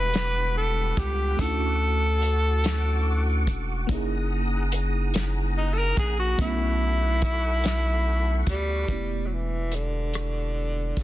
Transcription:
0.00 0.94 E1 loud
0.00 1.37 G3 medium
0.00 1.35 B3 medium
0.00 1.36 D4 medium
0.00 1.37 E4 medium
0.00 1.36 G4 medium
0.00 0.57 B4 loud
0.00 1.38 F#5 medium
0.00 8.85 F#5 medium
0.00 1.37 B5 medium
0.00 3.85 D6 medium
0.14 snare loud
0.14 closed hi-hat medium
0.57 1.00 A4 medium
0.97 1.35 C#2 medium
0.97 1.42 G4 loud
0.97 kick medium
0.97 closed hi-hat medium
1.37 3.50 D2 loud
1.37 3.84 A3 medium
1.37 3.85 C#4 medium
1.37 3.86 D4 medium
1.37 3.87 F#4 medium
1.37 3.48 A4 loud
1.37 3.87 C#6 medium
1.37 kick loud
1.37 closed hi-hat medium
1.42 3.86 E4 medium
1.42 1.48 F4 medium
1.50 3.91 F#4 medium
2.22 closed hi-hat medium
2.64 snare loud
2.64 closed hi-hat medium
3.47 3.86 E1 medium
3.47 kick medium
3.47 closed hi-hat medium
3.87 5.94 F#1 loud
3.87 6.34 A#3 medium
3.87 6.35 C#4 medium
3.87 6.36 D#4 medium
3.87 6.37 G#4 medium
3.87 6.37 A#5 medium
3.87 6.37 D#6 medium
3.87 kick loud
3.87 closed hi-hat medium
3.92 6.37 E4 medium
3.92 6.38 G#4 loud
4.72 closed hi-hat medium
5.14 snare loud
5.14 closed hi-hat medium
5.57 5.75 D#4 medium
5.74 5.80 A4 medium
5.79 5.98 A#4 loud
5.97 6.35 A#1 medium
5.97 6.18 G#4 loud
5.97 kick medium
5.97 closed hi-hat medium
6.20 6.38 F#4 loud
6.37 8.44 B1 loud
6.37 8.84 A3 medium
6.37 8.85 B3 medium
6.37 8.86 C#4 medium
6.37 8.86 A4 medium
6.37 8.87 B5 medium
6.37 8.86 C#6 medium
6.37 kick loud
6.37 closed hi-hat medium
6.42 8.45 E4 loud
6.42 8.87 E4 medium
6.42 8.88 F#4 medium
7.22 kick medium
7.22 closed hi-hat medium
7.64 snare loud
7.64 closed hi-hat medium
8.47 8.85 D2 medium
8.47 9.28 G3 loud
8.47 kick medium
8.47 closed hi-hat medium
8.87 10.93 E1 loud
8.87 11.03 A3 medium
8.87 11.03 B3 soft
8.87 8.96 C#4 soft
8.87 kick medium
8.87 closed hi-hat medium
8.92 11.03 E4 soft
8.92 11.03 G4 medium
8.97 11.03 D5 medium
9.26 9.35 F#3 soft
9.34 9.77 E3 medium
9.72 11.02 D3 medium
9.72 closed hi-hat medium
10.14 cross-stick loud
10.14 closed hi-hat medium
10.97 11.03 F#1 medium
10.97 kick medium
10.97 closed hi-hat soft

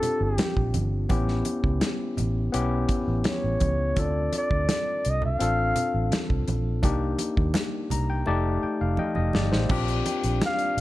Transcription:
0.00 1.13 C4 medium
0.00 1.12 D4 medium
0.00 1.12 F4 medium
0.00 1.11 G4 medium
0.00 0.25 A4 medium
0.00 closed hi-hat medium
0.00 low conga soft
0.21 0.36 G1 medium
0.21 0.76 G4 medium
0.38 snare loud
0.38 closed hi-hat medium
0.38 high conga medium
0.57 0.72 A#1 medium
0.57 kick medium
0.74 1.06 G1 medium
0.74 closed hi-hat medium
0.74 high conga medium
1.09 1.41 A1 medium
1.09 2.33 B3 medium
1.09 2.33 C#4 medium
1.09 2.34 E4 medium
1.09 2.34 G4 medium
1.09 kick loud
1.09 closed hi-hat medium
1.09 muted conga medium
1.28 snare soft
1.45 closed hi-hat medium
1.45 muted conga soft
1.64 1.80 C#2 medium
1.64 kick medium
1.81 snare medium
1.81 closed hi-hat medium
1.81 high conga medium
2.17 2.49 A1 medium
2.17 closed hi-hat medium
2.17 low conga medium
2.52 2.85 B1 medium
2.52 3.76 B3 medium
2.52 3.77 C#4 medium
2.52 3.77 E4 medium
2.52 3.77 G4 medium
2.52 closed hi-hat medium
2.89 kick medium
2.89 closed hi-hat medium
3.08 3.23 A1 medium
3.24 snare loud
3.24 closed hi-hat medium
3.24 high conga medium
3.29 4.01 C#5 medium
3.44 3.59 A1 medium
3.60 3.92 C#2 medium
3.60 kick medium
3.60 closed hi-hat medium
3.60 high conga medium
3.96 4.28 D2 loud
3.96 5.20 C4 medium
3.96 5.20 D4 medium
3.96 5.20 F4 medium
3.96 5.21 A4 medium
3.96 4.34 D5 medium
3.96 kick medium
3.96 closed hi-hat medium
3.96 muted conga medium
4.33 closed hi-hat medium
4.33 muted conga soft
4.38 5.11 D5 medium
4.51 4.66 D2 medium
4.51 kick medium
4.69 snare loud
4.69 closed hi-hat medium
4.69 high conga medium
5.05 5.36 C2 medium
5.05 closed hi-hat medium
5.10 5.25 D#5 medium
5.22 low conga medium
5.26 6.28 F5 loud
5.39 5.72 A1 medium
5.39 6.63 C4 medium
5.39 6.64 D4 medium
5.39 6.64 F4 medium
5.39 6.64 A4 medium
5.39 closed hi-hat medium
5.76 closed hi-hat medium
5.76 low conga medium
5.94 6.10 A1 medium
6.12 snare medium
6.12 closed hi-hat medium
6.12 high conga medium
6.30 6.46 C2 medium
6.30 kick medium
6.48 6.84 A#1 medium
6.48 closed hi-hat medium
6.48 high conga medium
6.83 7.15 C2 medium
6.83 8.06 A#3 medium
6.83 8.06 D4 medium
6.83 8.07 D#4 medium
6.83 8.07 G4 medium
6.83 kick medium
6.83 closed hi-hat medium
6.83 muted conga soft
7.18 closed hi-hat medium
7.18 muted conga soft
7.37 7.53 D#2 medium
7.37 kick medium
7.54 snare medium
7.54 closed hi-hat medium
7.54 high conga medium
7.90 8.22 C2 medium
7.90 8.08 A#5 medium
7.90 closed hi-hat medium
7.90 low conga medium
8.10 8.26 G5 medium
8.26 8.58 F1 medium
8.26 9.50 A3 medium
8.26 9.50 D#4 medium
8.26 9.51 G4 medium
8.26 9.34 D5 medium
8.26 8.60 A5 medium
8.26 muted conga soft
8.63 8.80 G5 medium
8.63 muted fingered electric bass stroke soft
8.81 8.97 F1 medium
8.81 8.98 F5 medium
8.97 9.14 D#5 medium
8.97 9.16 G5 medium
8.97 high conga medium
9.15 9.32 F1 medium
9.15 9.33 D#5 medium
9.15 high conga soft
9.33 9.50 G1 medium
9.33 9.68 D5 medium
9.33 snare medium
9.33 high conga medium
9.52 9.68 A1 medium
9.52 9.86 C5 medium
9.52 snare medium
9.69 10.01 A#1 loud
9.69 10.80 G3 medium
9.69 10.80 A#3 medium
9.69 10.80 C4 medium
9.69 10.80 D4 medium
9.69 10.80 F4 medium
9.69 10.80 G4 medium
9.69 kick loud
9.69 crash medium
9.69 muted conga medium
9.88 closed hi-hat soft
10.06 10.80 G5 medium
10.06 closed hi-hat medium
10.06 muted conga soft
10.24 10.40 A#1 medium
10.24 closed hi-hat medium
10.42 snare loud
10.42 closed hi-hat medium
10.42 high conga medium
10.46 10.80 F5 loud
10.59 closed hi-hat medium
10.77 10.80 A1 medium

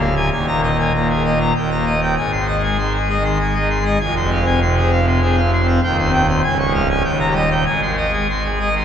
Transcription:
0.00 0.30 D1 loud
0.00 0.30 D2 loud
0.00 0.14 F5 medium
0.16 0.29 G#5 medium
0.32 1.52 D#1 loud
0.32 1.52 D#2 loud
0.32 0.46 G#5 loud
0.48 0.61 A#5 medium
0.53 0.71 A#2 medium
0.63 0.77 D#5 medium
0.74 0.92 A#3 medium
0.79 0.92 G#5 medium
0.94 1.12 A#2 medium
0.94 1.08 A#5 medium
1.10 1.23 G#4 medium
1.16 1.33 A#3 medium
1.25 1.39 D#5 medium
1.35 1.53 A#2 medium
1.41 1.53 A#5 medium
1.56 2.16 D#1 medium
1.56 2.16 D#2 medium
1.56 1.70 G5 medium
1.71 1.85 A#5 medium
1.76 1.94 A#3 medium
1.86 2.00 D#5 medium
2.01 2.15 G5 medium
2.17 3.97 G#1 medium
2.17 3.97 G#2 medium
2.17 2.31 G#5 medium
2.32 2.46 C6 medium
2.38 2.56 D#3 medium
2.48 2.62 D#5 medium
2.58 2.77 G#3 medium
2.63 2.77 G#5 medium
2.79 2.97 D#3 medium
2.79 2.93 C6 medium
2.94 3.08 G#4 medium
2.99 3.17 G#3 medium
3.10 3.23 D#5 medium
3.20 3.38 D#3 medium
3.24 3.38 C6 medium
3.40 3.58 G#3 medium
3.40 3.54 G#4 medium
3.55 3.69 D#5 medium
3.60 3.78 D#3 medium
3.70 3.84 C6 medium
3.80 3.98 G#3 medium
3.85 3.98 D#5 medium
4.01 5.79 F1 loud
4.01 5.79 F2 loud
4.01 4.14 G#5 medium
4.16 4.30 C6 loud
4.21 4.39 C3 medium
4.32 4.45 F5 medium
4.41 4.59 C4 medium
4.46 4.60 G#5 medium
4.62 4.80 C3 medium
4.62 4.75 C6 medium
4.77 4.91 G#4 medium
4.82 5.00 C4 medium
4.92 5.05 F5 loud
5.02 5.20 C3 medium
5.07 5.21 C6 medium
5.22 5.40 C4 medium
5.22 5.36 G#4 medium
5.37 5.51 F5 medium
5.42 5.60 C3 medium
5.53 5.66 C6 medium
5.63 5.80 C4 medium
5.68 5.81 F5 medium
5.83 6.42 D#1 loud
5.83 6.42 D#2 loud
5.83 5.97 G5 loud
5.99 6.12 C6 loud
6.03 6.21 C4 medium
6.13 6.27 G5 loud
6.29 6.41 C6 medium
6.44 7.03 C#1 loud
6.44 7.03 C#2 loud
6.44 6.57 G#5 medium
6.59 6.73 C#6 loud
6.65 6.82 G#3 medium
6.75 6.88 F5 medium
6.90 7.02 G#5 medium
7.05 7.65 D#1 loud
7.05 7.65 D#2 loud
7.05 7.18 G5 medium
7.20 7.34 A#5 loud
7.26 7.44 G3 medium
7.35 7.49 D#5 medium
7.51 7.64 G5 medium
7.66 8.85 G#1 medium
7.66 8.85 G#2 medium
7.66 7.80 G#5 medium
7.82 7.96 C6 medium
7.87 8.06 D#3 medium
7.97 8.12 D#5 medium
8.08 8.27 G#3 medium
8.13 8.27 G#5 medium
8.29 8.48 D#3 medium
8.29 8.43 C6 medium
8.45 8.59 G#4 medium
8.51 8.69 G#3 medium
8.61 8.74 D#5 medium
8.71 8.85 D#3 medium
8.76 8.85 C6 medium

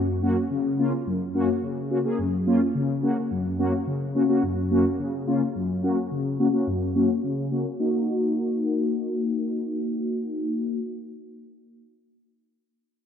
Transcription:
0.00 0.36 F#2 medium
0.22 0.36 A#3 medium
0.22 0.36 C#4 medium
0.22 0.36 F#4 loud
0.51 0.92 C#3 medium
0.79 0.93 A#3 medium
0.79 0.93 C#4 medium
0.79 0.93 F4 medium
1.07 1.48 F#2 medium
1.35 1.49 A#3 medium
1.35 1.49 C#4 medium
1.35 1.49 F#4 loud
1.63 2.04 C#3 medium
1.91 1.98 A#3 medium
1.91 1.98 C#4 medium
1.91 1.98 F#4 loud
2.05 2.19 A#3 medium
2.05 2.19 C#4 medium
2.05 2.19 G#4 medium
2.19 2.60 F#2 medium
2.47 2.61 A#3 medium
2.47 2.61 C#4 medium
2.47 2.61 F4 loud
2.75 3.17 C#3 medium
3.03 3.17 A#3 medium
3.03 3.17 C#4 medium
3.03 3.17 F#4 medium
3.31 3.73 F#2 medium
3.59 3.73 A#3 medium
3.59 3.73 C#4 medium
3.59 3.73 F#4 loud
3.87 4.29 C#3 medium
4.15 4.23 A#3 medium
4.15 4.23 C#4 medium
4.15 4.23 F#4 medium
4.29 4.43 A#3 medium
4.29 4.43 C#4 medium
4.29 4.43 F#4 medium
4.43 4.85 F#2 medium
4.71 4.85 A#3 medium
4.71 4.85 C#4 medium
4.71 4.85 F#4 loud
4.99 5.41 C#3 medium
5.27 5.41 A#3 medium
5.27 5.41 C#4 medium
5.27 5.41 F4 loud
5.55 5.97 F#2 medium
5.83 5.97 A#3 medium
5.83 5.97 C#4 medium
5.83 5.97 F#4 loud
6.11 6.53 C#3 medium
6.39 6.47 A#3 medium
6.39 6.47 C#4 medium
6.39 6.47 F#4 medium
6.53 6.67 A#3 medium
6.53 6.67 C#4 medium
6.53 6.67 F#4 medium
6.67 7.09 F#2 medium
6.95 7.09 A#3 medium
6.95 7.09 C#4 medium
6.95 7.09 F#4 loud
7.23 7.65 C#3 medium
7.51 7.65 A#3 medium
7.51 7.65 C#4 medium
7.51 7.65 F#4 medium
7.79 10.80 A#3 medium
7.79 10.80 D#4 medium
7.79 10.80 F#4 medium

